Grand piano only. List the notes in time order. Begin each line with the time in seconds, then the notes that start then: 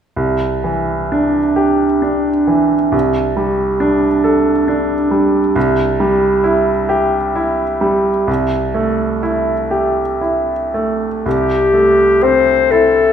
0.16 C2
0.64 E3
1.12 D4
1.56 G4
2.02 D4
2.47 E3
2.92 C2
3.37 G3
3.80 D4
4.24 A4
4.68 D4
5.11 G3
5.56 C2
6.00 G3
6.44 E4
6.89 G4
7.36 E4
7.81 G3
8.28 C2
8.74 A3
9.23 E4
9.71 G4
10.21 E4
10.74 A3
11.26 C2
11.74 A3
12.23 C4
12.72 E4